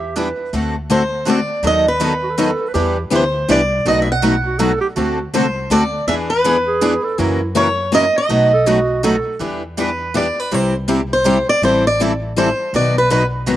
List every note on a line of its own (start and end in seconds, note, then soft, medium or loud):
0.00 0.31 E2 medium
0.00 0.18 G4 medium
0.00 0.13 E5 medium
0.16 0.27 E3 medium
0.16 0.27 G3 medium
0.16 0.28 B3 medium
0.16 0.27 D4 medium
0.16 0.27 E4 medium
0.16 0.28 G4 medium
0.16 0.54 B4 medium
0.16 0.28 B4 medium
0.53 1.42 D2 medium
0.53 0.74 D3 medium
0.53 0.74 A3 medium
0.53 0.74 C4 medium
0.53 0.75 F#4 medium
0.53 0.75 A4 medium
0.90 1.01 D3 medium
0.90 1.01 A3 medium
0.90 1.01 C4 medium
0.90 1.02 F#4 medium
0.90 1.02 A4 medium
0.90 1.25 C5 medium
1.25 1.37 D3 medium
1.25 1.38 A3 medium
1.25 1.38 C4 medium
1.25 1.38 F#4 medium
1.25 1.38 A4 loud
1.30 1.66 D5 medium
1.63 2.52 D#2 medium
1.63 1.84 D#3 medium
1.63 1.85 F#3 medium
1.63 1.85 B3 medium
1.63 1.85 D#4 medium
1.63 1.85 A4 medium
1.67 1.88 D#5 medium
1.88 2.58 B4 medium
2.00 2.12 D#3 medium
2.00 2.12 F#3 medium
2.00 2.12 B3 medium
2.00 2.12 D#4 medium
2.00 2.12 A4 medium
2.23 2.32 F#4 medium
2.30 2.32 A4 medium
2.37 2.49 D#3 medium
2.37 2.49 F#3 medium
2.37 2.50 B3 medium
2.37 2.50 D#4 medium
2.37 2.70 A4 loud
2.37 2.50 A4 loud
2.68 2.73 B4 loud
2.74 3.04 E2 medium
2.74 2.96 E3 medium
2.74 2.96 G3 medium
2.74 2.96 B3 medium
2.74 2.96 D4 medium
2.74 2.96 E4 medium
2.74 3.02 G4 medium
2.74 2.96 G4 medium
2.74 2.96 B4 medium
3.11 3.43 D2 medium
3.11 3.23 E3 medium
3.11 3.23 G3 medium
3.11 3.22 B3 medium
3.11 3.23 D4 medium
3.11 3.23 E4 loud
3.11 3.23 G4 loud
3.11 3.23 B4 medium
3.15 3.52 C5 medium
3.48 3.80 C2 medium
3.48 3.60 E3 medium
3.48 3.60 G3 medium
3.48 3.60 B3 medium
3.48 3.60 D4 medium
3.48 3.60 E4 medium
3.48 3.60 G4 medium
3.48 3.60 B4 loud
3.48 3.88 D5 medium
3.85 4.74 B1 medium
3.85 4.07 B2 medium
3.85 4.07 F#3 medium
3.85 4.07 A3 medium
3.85 4.07 D#4 medium
3.85 4.07 F#4 medium
3.85 4.07 B4 medium
3.85 4.00 D#5 medium
4.02 4.10 E5 medium
4.12 4.80 F#5 medium
4.22 4.34 B2 medium
4.22 4.34 F#3 medium
4.22 4.34 A3 medium
4.22 4.34 D#4 medium
4.22 4.34 F#4 medium
4.22 4.34 B4 medium
4.46 4.60 F#4 medium
4.58 4.71 B2 medium
4.58 4.71 F#3 medium
4.58 4.71 A3 medium
4.58 4.71 D#4 medium
4.58 4.71 F#4 medium
4.58 4.80 A4 loud
4.58 4.71 B4 medium
4.81 4.87 G4 medium
4.96 5.26 D2 medium
4.96 5.17 D3 medium
4.96 5.17 A3 medium
4.96 5.18 C4 medium
4.96 5.24 F#4 medium
4.96 5.18 F#4 medium
4.96 5.18 A4 medium
5.33 5.65 C2 medium
5.33 5.45 D3 medium
5.33 5.45 A3 medium
5.33 5.45 C4 medium
5.33 5.45 F#4 medium
5.33 5.45 A4 medium
5.33 5.69 C5 medium
5.70 6.02 D2 medium
5.70 5.82 D3 medium
5.70 5.82 A3 medium
5.70 5.82 C4 medium
5.70 5.82 F#4 loud
5.70 5.82 A4 loud
5.70 6.07 D5 loud
6.07 6.96 E2 medium
6.07 6.29 E3 medium
6.07 6.29 B3 medium
6.07 6.29 D4 medium
6.07 6.29 G#4 medium
6.07 6.29 B4 medium
6.07 6.14 E5 loud
6.30 7.00 B4 medium
6.44 6.56 E3 medium
6.44 6.56 B3 medium
6.44 6.56 D4 medium
6.44 6.56 G#4 loud
6.44 6.56 B4 medium
6.67 7.06 G#4 medium
6.81 6.93 E3 medium
6.81 6.93 B3 medium
6.81 6.93 D4 loud
6.81 6.93 G#4 loud
6.81 6.93 B4 medium
7.04 7.20 A4 loud
7.18 8.08 F#2 medium
7.18 7.39 C#3 medium
7.18 7.39 E3 medium
7.18 7.40 F#3 medium
7.18 7.39 A#3 medium
7.18 7.40 C#4 medium
7.18 7.49 E4 medium
7.18 7.40 E4 medium
7.18 7.40 F#4 medium
7.18 7.40 A#4 medium
7.55 7.66 C#3 medium
7.55 7.66 E3 loud
7.55 7.67 F#3 medium
7.55 7.66 A#3 loud
7.55 7.67 C#4 medium
7.55 7.67 E4 medium
7.55 7.67 F#4 loud
7.55 7.67 A#4 medium
7.55 7.94 C#5 medium
7.92 8.03 C#3 medium
7.92 8.03 E3 medium
7.92 8.04 F#3 medium
7.92 8.03 A#3 medium
7.92 8.04 C#4 medium
7.92 8.04 E4 medium
7.92 8.04 F#4 medium
7.92 8.05 A#4 medium
7.92 8.17 D#5 loud
8.18 9.01 D#5 medium
8.29 9.18 B1 medium
8.29 8.51 B2 medium
8.29 8.51 F#3 medium
8.29 8.51 A3 medium
8.29 8.51 D#4 medium
8.29 8.51 F#4 medium
8.29 8.51 B4 medium
8.54 8.68 A4 loud
8.67 8.78 B2 medium
8.67 8.78 F#3 medium
8.67 8.78 A3 medium
8.67 8.78 D#4 medium
8.67 9.03 F#4 medium
8.67 8.78 F#4 medium
8.67 8.78 B4 medium
9.03 9.15 B2 medium
9.03 9.15 F#3 medium
9.03 9.15 A3 medium
9.03 9.15 D#4 medium
9.03 9.15 F#4 medium
9.03 9.38 A4 medium
9.03 9.15 B4 medium
9.39 10.29 E2 medium
9.39 9.61 E3 medium
9.39 9.61 G3 medium
9.39 9.62 B3 medium
9.39 9.61 D4 medium
9.39 9.62 E4 medium
9.39 9.62 G4 medium
9.39 9.62 B4 medium
9.77 9.89 E3 medium
9.77 9.89 G3 medium
9.77 9.89 B3 medium
9.77 9.89 D4 medium
9.77 9.89 E4 medium
9.77 9.89 G4 loud
9.77 9.89 B4 medium
9.77 10.13 B4 medium
10.14 10.26 E3 medium
10.14 10.26 G3 medium
10.14 10.26 B3 medium
10.14 10.26 D4 medium
10.14 10.26 E4 medium
10.14 10.26 G4 medium
10.14 10.26 B4 medium
10.14 10.40 D5 medium
10.40 10.54 B4 medium
10.52 11.41 C2 medium
10.52 10.73 C3 medium
10.52 10.73 G3 medium
10.52 10.73 C4 medium
10.52 10.73 E4 medium
10.52 10.73 G4 medium
10.52 10.75 C5 medium
10.88 10.99 C3 medium
10.88 11.00 G3 medium
10.88 11.00 C4 medium
10.88 11.00 E4 medium
10.88 11.00 G4 medium
11.13 11.47 C5 medium
11.24 11.36 C3 medium
11.24 11.37 G3 medium
11.24 11.37 C4 medium
11.24 11.37 E4 medium
11.24 11.37 G4 loud
11.49 11.63 D5 loud
11.62 12.51 A1 medium
11.62 11.84 E3 medium
11.62 11.84 G3 medium
11.62 11.84 C4 medium
11.62 11.84 E4 medium
11.62 11.84 A4 medium
11.62 11.86 C5 medium
11.87 12.00 D5 medium
12.01 12.12 E3 medium
12.01 12.11 G3 medium
12.01 12.12 C4 medium
12.01 12.12 E4 medium
12.01 12.12 A4 medium
12.38 12.48 E3 medium
12.38 12.48 G3 medium
12.38 12.49 C4 medium
12.38 12.49 E4 medium
12.38 12.49 A4 medium
12.38 12.72 C5 medium
12.73 13.57 B1 medium
12.73 12.95 B2 medium
12.73 12.95 D#3 medium
12.73 12.95 F#3 medium
12.73 12.95 B3 medium
12.73 12.95 D#4 medium
12.73 12.96 F#4 medium
12.73 12.95 B4 medium
12.73 12.97 D5 medium
12.98 13.10 B4 medium
13.10 13.22 B2 medium
13.10 13.22 D#3 medium
13.10 13.22 F#3 medium
13.10 13.22 B3 medium
13.10 13.22 D#4 medium
13.10 13.22 F#4 medium
13.10 13.25 B4 medium
13.10 13.22 B4 medium
13.46 13.57 B2 medium
13.46 13.57 D#3 medium
13.46 13.57 F#3 medium
13.46 13.57 B3 medium
13.46 13.57 D#4 loud
13.46 13.57 F#4 medium
13.46 13.57 B4 medium